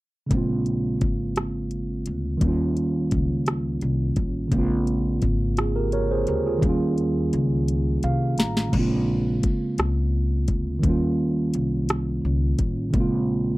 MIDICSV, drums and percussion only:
0, 0, Header, 1, 2, 480
1, 0, Start_track
1, 0, Tempo, 701754
1, 209, Time_signature, 6, 3, 24, 8
1, 9288, End_track
2, 0, Start_track
2, 0, Title_t, "Drums"
2, 210, Note_on_c, 9, 36, 83
2, 210, Note_on_c, 9, 42, 54
2, 279, Note_off_c, 9, 36, 0
2, 279, Note_off_c, 9, 42, 0
2, 451, Note_on_c, 9, 42, 39
2, 519, Note_off_c, 9, 42, 0
2, 691, Note_on_c, 9, 42, 41
2, 695, Note_on_c, 9, 36, 75
2, 760, Note_off_c, 9, 42, 0
2, 764, Note_off_c, 9, 36, 0
2, 930, Note_on_c, 9, 42, 59
2, 939, Note_on_c, 9, 37, 92
2, 998, Note_off_c, 9, 42, 0
2, 1008, Note_off_c, 9, 37, 0
2, 1168, Note_on_c, 9, 42, 44
2, 1237, Note_off_c, 9, 42, 0
2, 1407, Note_on_c, 9, 42, 42
2, 1475, Note_off_c, 9, 42, 0
2, 1649, Note_on_c, 9, 42, 53
2, 1650, Note_on_c, 9, 36, 77
2, 1718, Note_off_c, 9, 36, 0
2, 1718, Note_off_c, 9, 42, 0
2, 1892, Note_on_c, 9, 42, 42
2, 1960, Note_off_c, 9, 42, 0
2, 2129, Note_on_c, 9, 42, 48
2, 2135, Note_on_c, 9, 36, 74
2, 2197, Note_off_c, 9, 42, 0
2, 2203, Note_off_c, 9, 36, 0
2, 2369, Note_on_c, 9, 42, 63
2, 2379, Note_on_c, 9, 37, 97
2, 2438, Note_off_c, 9, 42, 0
2, 2447, Note_off_c, 9, 37, 0
2, 2609, Note_on_c, 9, 42, 43
2, 2677, Note_off_c, 9, 42, 0
2, 2846, Note_on_c, 9, 42, 44
2, 2850, Note_on_c, 9, 36, 67
2, 2914, Note_off_c, 9, 42, 0
2, 2918, Note_off_c, 9, 36, 0
2, 3089, Note_on_c, 9, 36, 88
2, 3089, Note_on_c, 9, 42, 50
2, 3157, Note_off_c, 9, 42, 0
2, 3158, Note_off_c, 9, 36, 0
2, 3333, Note_on_c, 9, 42, 37
2, 3401, Note_off_c, 9, 42, 0
2, 3568, Note_on_c, 9, 42, 44
2, 3574, Note_on_c, 9, 36, 81
2, 3637, Note_off_c, 9, 42, 0
2, 3642, Note_off_c, 9, 36, 0
2, 3810, Note_on_c, 9, 42, 62
2, 3820, Note_on_c, 9, 37, 89
2, 3879, Note_off_c, 9, 42, 0
2, 3888, Note_off_c, 9, 37, 0
2, 4051, Note_on_c, 9, 42, 48
2, 4120, Note_off_c, 9, 42, 0
2, 4287, Note_on_c, 9, 42, 43
2, 4356, Note_off_c, 9, 42, 0
2, 4531, Note_on_c, 9, 36, 87
2, 4533, Note_on_c, 9, 42, 51
2, 4599, Note_off_c, 9, 36, 0
2, 4601, Note_off_c, 9, 42, 0
2, 4772, Note_on_c, 9, 42, 42
2, 4841, Note_off_c, 9, 42, 0
2, 5013, Note_on_c, 9, 42, 47
2, 5081, Note_off_c, 9, 42, 0
2, 5255, Note_on_c, 9, 42, 52
2, 5324, Note_off_c, 9, 42, 0
2, 5491, Note_on_c, 9, 42, 45
2, 5559, Note_off_c, 9, 42, 0
2, 5730, Note_on_c, 9, 42, 42
2, 5743, Note_on_c, 9, 38, 79
2, 5798, Note_off_c, 9, 42, 0
2, 5811, Note_off_c, 9, 38, 0
2, 5860, Note_on_c, 9, 38, 62
2, 5929, Note_off_c, 9, 38, 0
2, 5971, Note_on_c, 9, 36, 92
2, 5972, Note_on_c, 9, 42, 48
2, 5972, Note_on_c, 9, 49, 67
2, 6039, Note_off_c, 9, 36, 0
2, 6040, Note_off_c, 9, 49, 0
2, 6041, Note_off_c, 9, 42, 0
2, 6452, Note_on_c, 9, 42, 70
2, 6455, Note_on_c, 9, 36, 85
2, 6520, Note_off_c, 9, 42, 0
2, 6524, Note_off_c, 9, 36, 0
2, 6690, Note_on_c, 9, 42, 60
2, 6700, Note_on_c, 9, 37, 102
2, 6758, Note_off_c, 9, 42, 0
2, 6768, Note_off_c, 9, 37, 0
2, 7167, Note_on_c, 9, 42, 57
2, 7171, Note_on_c, 9, 36, 74
2, 7235, Note_off_c, 9, 42, 0
2, 7239, Note_off_c, 9, 36, 0
2, 7410, Note_on_c, 9, 36, 86
2, 7411, Note_on_c, 9, 42, 53
2, 7479, Note_off_c, 9, 36, 0
2, 7480, Note_off_c, 9, 42, 0
2, 7891, Note_on_c, 9, 42, 65
2, 7959, Note_off_c, 9, 42, 0
2, 8131, Note_on_c, 9, 42, 55
2, 8141, Note_on_c, 9, 37, 97
2, 8200, Note_off_c, 9, 42, 0
2, 8209, Note_off_c, 9, 37, 0
2, 8608, Note_on_c, 9, 42, 62
2, 8611, Note_on_c, 9, 36, 68
2, 8677, Note_off_c, 9, 42, 0
2, 8679, Note_off_c, 9, 36, 0
2, 8848, Note_on_c, 9, 42, 50
2, 8849, Note_on_c, 9, 36, 93
2, 8917, Note_off_c, 9, 42, 0
2, 8918, Note_off_c, 9, 36, 0
2, 9288, End_track
0, 0, End_of_file